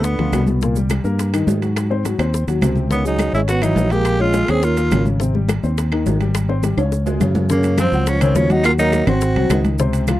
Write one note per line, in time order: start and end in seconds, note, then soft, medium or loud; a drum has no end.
0.00 0.16 D2 medium
0.00 0.14 B3 medium
0.00 0.47 B3 medium
0.00 0.14 B4 medium
0.00 high conga soft
0.00 maracas medium
0.04 0.48 D3 medium
0.04 high bongo medium
0.18 0.32 D2 medium
0.18 0.31 F3 medium
0.18 0.31 F4 medium
0.18 high bongo soft
0.18 high conga soft
0.18 high timbale medium
0.33 0.99 C2 medium
0.33 0.57 B2 medium
0.33 0.57 B3 medium
0.33 high bongo soft
0.33 low bongo medium
0.33 high conga medium
0.33 high timbale medium
0.33 low timbale medium
0.33 claves medium
0.33 maracas medium
0.47 high bongo soft
0.47 high conga medium
0.47 maracas soft
0.61 0.74 A#2 medium
0.61 0.74 A#3 medium
0.61 high bongo medium
0.61 high conga soft
0.61 maracas medium
0.76 1.00 G3 medium
0.76 1.00 G4 medium
0.76 high bongo soft
0.76 high conga soft
0.76 maracas medium
0.90 high bongo medium
0.90 high conga medium
0.90 high timbale medium
0.90 low timbale medium
0.90 claves medium
0.90 maracas medium
1.04 1.44 G2 medium
1.04 1.28 A#3 medium
1.04 1.28 A#4 medium
1.04 high conga soft
1.04 maracas soft
1.19 high bongo medium
1.19 high conga soft
1.19 high timbale medium
1.19 maracas medium
1.33 1.57 D#3 medium
1.33 1.57 D#4 medium
1.33 high bongo soft
1.33 high conga soft
1.33 high timbale medium
1.33 claves medium
1.33 maracas medium
1.47 2.14 G#2 medium
1.47 high bongo soft
1.47 low bongo medium
1.47 high conga medium
1.47 low timbale medium
1.47 maracas medium
1.62 1.86 F#3 medium
1.62 1.86 F#4 medium
1.62 high bongo soft
1.62 high timbale medium
1.62 maracas soft
1.76 high bongo medium
1.76 high conga soft
1.76 high timbale medium
1.76 claves medium
1.76 maracas medium
1.90 2.02 C4 medium
1.90 2.02 C5 medium
1.90 high bongo soft
1.90 high conga soft
2.05 2.17 F#3 medium
2.05 2.17 F#4 medium
2.05 high bongo medium
2.05 high conga medium
2.05 high timbale medium
2.05 low timbale medium
2.05 maracas medium
2.19 2.46 D#2 medium
2.19 2.43 C4 medium
2.19 2.43 C5 medium
2.19 high timbale medium
2.19 claves medium
2.19 maracas soft
2.33 high bongo medium
2.33 high conga soft
2.33 maracas medium
2.47 2.61 D#2 medium
2.47 2.60 F#3 medium
2.47 2.60 F#4 medium
2.47 high bongo soft
2.47 high conga soft
2.47 high timbale medium
2.47 maracas soft
2.61 3.28 C#2 medium
2.61 2.86 C3 medium
2.61 2.86 C4 medium
2.61 high bongo soft
2.61 low bongo medium
2.61 high conga medium
2.61 high timbale medium
2.61 low timbale medium
2.61 claves medium
2.61 maracas medium
2.76 high bongo soft
2.76 high conga medium
2.76 maracas soft
2.90 3.02 C#3 medium
2.90 3.05 D#3 medium
2.90 3.04 B3 medium
2.90 3.03 C#4 medium
2.90 high bongo medium
2.90 high conga soft
2.90 maracas medium
3.04 3.32 F#3 medium
3.04 3.28 G#3 medium
3.04 3.33 D#4 medium
3.04 3.29 G#4 medium
3.04 high bongo soft
3.04 high conga soft
3.04 maracas medium
3.19 high bongo medium
3.19 high conga medium
3.19 high timbale medium
3.19 low timbale medium
3.19 claves medium
3.19 maracas medium
3.33 3.73 G#1 medium
3.33 3.41 G#3 medium
3.33 3.57 C#4 medium
3.33 3.41 E4 medium
3.33 3.57 C#5 medium
3.33 high conga soft
3.33 maracas soft
3.48 3.65 B3 medium
3.48 3.64 F#4 medium
3.48 high bongo medium
3.48 high conga soft
3.48 high timbale medium
3.48 maracas medium
3.62 3.86 E3 medium
3.62 3.93 F#3 medium
3.62 3.93 D#4 medium
3.62 3.86 E4 medium
3.62 high bongo soft
3.62 high conga soft
3.62 high timbale medium
3.62 claves medium
3.62 maracas medium
3.76 4.43 A#1 medium
3.76 high bongo soft
3.76 low bongo medium
3.76 high conga medium
3.76 low timbale medium
3.76 maracas medium
3.90 4.15 G#3 medium
3.90 4.22 A#3 medium
3.90 4.22 G4 loud
3.90 4.15 G#4 medium
3.90 high bongo soft
3.90 high timbale medium
3.90 maracas soft
4.05 high bongo medium
4.05 high conga soft
4.05 high timbale medium
4.05 claves medium
4.05 maracas medium
4.19 4.51 G#3 medium
4.19 4.31 C#4 medium
4.19 4.52 F4 loud
4.19 4.32 C#5 medium
4.19 high bongo soft
4.19 high conga soft
4.33 4.46 G#3 medium
4.33 4.46 G#4 medium
4.33 high bongo medium
4.33 high conga medium
4.33 high timbale medium
4.33 low timbale medium
4.33 maracas medium
4.48 4.89 D#2 medium
4.48 4.65 C4 medium
4.48 4.72 C#4 medium
4.48 4.66 G#4 loud
4.48 4.72 C#5 medium
4.48 high timbale medium
4.48 claves medium
4.48 maracas soft
4.63 5.06 A#3 medium
4.63 5.07 F4 medium
4.63 high bongo medium
4.63 high conga soft
4.63 maracas medium
4.77 4.89 A#3 medium
4.77 4.89 A#4 medium
4.77 high bongo soft
4.77 high conga soft
4.77 high timbale medium
4.77 maracas medium
4.91 5.58 G#1 medium
4.91 5.16 C#3 medium
4.91 5.16 C#4 medium
4.91 high bongo soft
4.91 low bongo medium
4.91 high conga medium
4.91 high timbale medium
4.91 low timbale medium
4.91 claves medium
4.91 maracas medium
5.06 high bongo soft
5.06 high conga medium
5.06 maracas soft
5.20 5.33 C3 medium
5.20 5.33 C4 medium
5.20 high bongo medium
5.20 high conga soft
5.20 maracas medium
5.35 5.58 G3 medium
5.35 5.59 G4 medium
5.35 high bongo soft
5.35 high conga soft
5.48 high bongo medium
5.48 high conga medium
5.48 high timbale medium
5.48 low timbale medium
5.48 claves medium
5.48 maracas medium
5.63 6.03 D#2 medium
5.63 5.87 C4 medium
5.63 5.87 C5 medium
5.63 high conga soft
5.63 maracas soft
5.77 high bongo medium
5.77 high conga soft
5.77 high timbale medium
5.77 maracas medium
5.91 6.16 D#3 medium
5.91 6.16 D#4 medium
5.91 high bongo soft
5.91 high conga soft
5.91 high timbale medium
5.91 claves medium
6.06 6.73 G#1 medium
6.06 high bongo soft
6.06 low bongo medium
6.06 high conga medium
6.06 low timbale medium
6.06 maracas medium
6.20 6.44 G3 medium
6.20 6.44 G4 medium
6.20 high bongo soft
6.20 high timbale medium
6.20 maracas soft
6.35 high bongo medium
6.35 high conga soft
6.35 high timbale medium
6.35 claves medium
6.35 maracas medium
6.49 6.61 C4 medium
6.49 6.61 C5 medium
6.49 high bongo soft
6.49 high conga soft
6.63 6.76 G3 medium
6.63 6.76 G4 medium
6.63 high bongo medium
6.63 high conga medium
6.63 high timbale medium
6.63 low timbale medium
6.63 maracas medium
6.77 7.18 C#2 medium
6.77 7.01 C#4 medium
6.77 7.02 C#5 medium
6.77 high timbale medium
6.77 claves medium
6.77 maracas soft
6.92 high bongo medium
6.92 high conga soft
6.92 maracas medium
7.06 7.18 G#3 medium
7.06 7.18 G#4 medium
7.06 high conga soft
7.06 low timbale medium
7.06 maracas soft
7.20 7.87 F#2 medium
7.20 7.44 C#3 medium
7.20 7.44 C#4 medium
7.20 high conga medium
7.20 low timbale medium
7.20 claves medium
7.20 maracas medium
7.35 low bongo medium
7.35 high conga medium
7.35 low timbale medium
7.35 maracas soft
7.49 7.73 C#3 medium
7.49 7.77 C#3 medium
7.49 7.77 A#3 medium
7.49 7.74 C#4 medium
7.49 7.74 C#5 medium
7.49 high bongo medium
7.49 maracas medium
7.63 high conga soft
7.63 high timbale medium
7.63 maracas medium
7.78 7.90 F3 medium
7.78 8.07 F3 medium
7.78 8.10 C4 medium
7.78 7.90 F4 medium
7.78 7.90 F5 medium
7.78 high bongo soft
7.78 high conga medium
7.78 high timbale medium
7.78 low timbale medium
7.78 claves medium
7.78 maracas medium
7.92 8.32 C#2 medium
7.92 8.17 F#3 medium
7.92 8.17 F#4 medium
7.92 8.17 F#5 medium
7.92 maracas soft
8.07 8.23 F3 medium
8.07 8.23 C#4 medium
8.07 high bongo medium
8.07 high conga soft
8.07 high timbale medium
8.07 maracas medium
8.21 8.45 C#3 medium
8.21 8.37 D#3 medium
8.21 8.38 C4 medium
8.21 8.45 C#4 medium
8.21 8.45 C#5 medium
8.21 high conga soft
8.21 high timbale medium
8.21 claves medium
8.21 maracas medium
8.35 9.02 D#2 medium
8.35 8.52 F3 medium
8.35 8.53 C#4 medium
8.35 high bongo medium
8.35 low bongo medium
8.35 high conga medium
8.35 low timbale medium
8.35 maracas medium
8.50 8.64 F#3 medium
8.50 8.74 F#3 medium
8.50 8.65 D#4 medium
8.50 8.74 F#4 medium
8.50 8.74 F#5 medium
8.50 high conga medium
8.50 high timbale medium
8.50 maracas soft
8.64 8.71 A#3 medium
8.64 8.72 F4 loud
8.64 high bongo medium
8.64 high timbale medium
8.64 claves medium
8.64 maracas medium
8.78 9.08 F#3 medium
8.78 9.03 A#3 medium
8.78 9.09 D#4 loud
8.78 9.03 A#4 medium
8.78 9.03 A#5 medium
8.78 high bongo soft
8.78 high conga soft
8.78 maracas medium
8.92 high bongo medium
8.92 high conga medium
8.92 high timbale medium
8.92 low timbale medium
8.92 maracas medium
9.07 9.34 G#1 medium
9.07 9.65 C4 medium
9.07 9.31 C4 medium
9.07 9.65 F#4 medium
9.07 9.31 C5 medium
9.07 9.32 C6 medium
9.07 high bongo soft
9.07 high conga soft
9.07 low conga medium
9.07 high timbale medium
9.07 claves medium
9.07 maracas soft
9.21 high bongo medium
9.21 high conga soft
9.21 maracas medium
9.36 9.49 C2 medium
9.36 9.48 F#3 medium
9.36 9.48 F#4 medium
9.36 9.49 F#5 medium
9.36 high bongo soft
9.36 high conga soft
9.36 high timbale medium
9.50 10.16 C#2 medium
9.50 9.75 D#3 medium
9.50 9.75 D#4 medium
9.50 9.75 D#5 medium
9.50 high bongo medium
9.50 low bongo medium
9.50 high conga medium
9.50 high timbale medium
9.50 low timbale medium
9.50 claves medium
9.50 maracas medium
9.65 high conga medium
9.65 high timbale medium
9.65 maracas soft
9.78 10.03 C3 medium
9.78 10.03 C4 medium
9.78 10.03 C5 medium
9.78 high bongo medium
9.78 maracas medium
9.93 high conga soft
9.93 high timbale medium
9.93 maracas medium
10.07 10.20 F3 medium
10.07 10.20 F4 medium
10.07 10.20 F5 medium
10.07 high bongo medium
10.07 high conga medium
10.07 high timbale medium
10.07 low timbale medium
10.07 claves medium
10.07 maracas medium